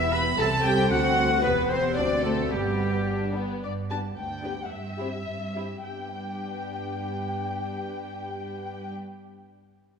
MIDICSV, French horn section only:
0, 0, Header, 1, 2, 480
1, 0, Start_track
1, 0, Key_signature, 1, "major"
1, 0, Tempo, 526316
1, 355, Time_signature, 2, 2, 24, 8
1, 1797, Tempo, 548446
1, 4677, Tempo, 580833
1, 8587, End_track
2, 0, Start_track
2, 0, Title_t, "French horn section"
2, 0, Program_c, 0, 60
2, 0, Note_on_c, 0, 59, 60
2, 0, Note_on_c, 0, 67, 62
2, 337, Note_on_c, 0, 69, 75
2, 339, Note_on_c, 0, 60, 77
2, 351, Note_off_c, 0, 67, 0
2, 352, Note_off_c, 0, 59, 0
2, 1281, Note_off_c, 0, 69, 0
2, 1296, Note_on_c, 0, 67, 74
2, 1298, Note_on_c, 0, 59, 77
2, 1302, Note_off_c, 0, 60, 0
2, 1780, Note_off_c, 0, 67, 0
2, 1781, Note_off_c, 0, 59, 0
2, 1791, Note_on_c, 0, 60, 67
2, 1796, Note_on_c, 0, 66, 68
2, 2279, Note_off_c, 0, 60, 0
2, 2282, Note_off_c, 0, 66, 0
2, 2285, Note_on_c, 0, 59, 55
2, 2287, Note_on_c, 0, 67, 59
2, 3005, Note_off_c, 0, 67, 0
2, 3019, Note_off_c, 0, 59, 0
2, 3503, Note_on_c, 0, 59, 46
2, 3511, Note_on_c, 0, 67, 44
2, 3581, Note_off_c, 0, 59, 0
2, 3586, Note_off_c, 0, 67, 0
2, 3964, Note_on_c, 0, 59, 44
2, 3969, Note_on_c, 0, 67, 42
2, 4044, Note_off_c, 0, 59, 0
2, 4047, Note_off_c, 0, 67, 0
2, 4444, Note_on_c, 0, 67, 48
2, 4450, Note_on_c, 0, 60, 49
2, 4525, Note_off_c, 0, 67, 0
2, 4529, Note_off_c, 0, 60, 0
2, 4912, Note_on_c, 0, 60, 38
2, 4912, Note_on_c, 0, 67, 35
2, 5000, Note_off_c, 0, 60, 0
2, 5000, Note_off_c, 0, 67, 0
2, 5150, Note_on_c, 0, 59, 32
2, 5152, Note_on_c, 0, 67, 31
2, 7698, Note_off_c, 0, 59, 0
2, 7699, Note_off_c, 0, 67, 0
2, 8587, End_track
0, 0, End_of_file